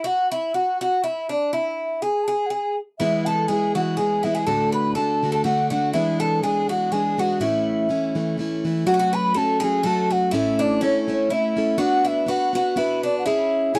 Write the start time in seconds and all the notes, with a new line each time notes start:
0.04 F#4 F#5
0.32 E4 E5
0.54 F#4 F#5
0.81 F#4 F#5
1.04 E4 E5
1.29 D4 D5
1.53 E4 E5
2.02 G#4 G#5
2.24 A5
2.28 G#4 G#5
2.46 G#4 F#5
2.50 G#5
2.99 E3 G#3 B3 E4 E5
3.26 A4 A5
3.48 E3 G#3 B3 E4 G#4 G#5
3.75 E3 G#3 B3 E4 F#4 F#5
3.97 E3 G#3 B3 E4 G#4 G#5
4.23 E3 G#3 B3 E4 E5
4.35 G#4 G#5
4.46 D2 A2 D3 A3 D4 F#4 A4 A5
4.72 B4 B5
4.95 D3 A3 D4 F#4 A4 A5
5.23 D3 A3 D4 F#4
5.32 A4 A5
5.44 D3 A3 D4 F#4 F#5
5.70 D3 A3 D4 F#4 F#5
5.93 E3 G#3 B3 D4 E4 E5
6.20 A4 A5
6.42 E3 G#3 B3 D4 G#4 G#5
6.68 E3 G#3 B3 D4 F#4 F#5
6.92 E3 G#3 B3 D4 G#4 G#5
7.17 E3 G#3 B3 D4 F#4 F#5
7.40 A2 E3 A3 C#4 E4 E5
7.89 E3 A3 C#4 E4
8.15 E3 A3 C#4 E4
8.38 E3 A3 C#4 E4
8.65 E3 A3 C#4 E4
8.86 F#3 A3 C#4 F#4 F#5
8.94 F#4
8.99 F#4
9.13 B4 B5
9.34 F#3 A3 C#4 F#4 A4 A5
9.60 F#3 A3 C#4 G#4
9.64 F#4 G#5
9.83 F#3 A3 C#4 F#4 A4 A5
10.11 F#4 F#5
10.31 A2 A3 C#4 E4 A4 E5
10.59 D4 D5
10.81 A3 C#4 E4 A4 C#5
11.08 A3 C#4 E4 A4 C#5
11.30 A3 C#4 E4 A4 E5
11.56 A3 C#4 E4 A4
11.78 B3 D4 F#4 B4
11.83 F#5
12.05 E4 E5
12.26 B3 D4 F#4 B4 F#5
12.53 B3 D4 F#4 B4 F#5
12.76 B3 D4 E4 F#4 B4 E5
13.03 D4 D5
13.19 F#5
13.26 C#4 E4 G#4 C#5 E5
13.74 C#4 E4 G#4 G#5